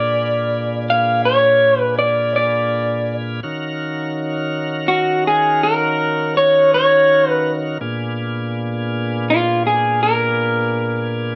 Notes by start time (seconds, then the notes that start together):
Already playing: A#2 D4 F4 G#4 B4 D5
0.90 F5
1.25 C#5
1.80 B4
1.99 D5
2.36 D5
3.43 D#3 C#4 F#4 A#4 F5
4.88 F#4
5.27 G#4
5.63 A#4
6.37 C#5
6.74 C#5
7.30 B4
7.81 A#2 B3 D4 F4 G#4
9.30 F4
9.67 G#4
10.03 A#4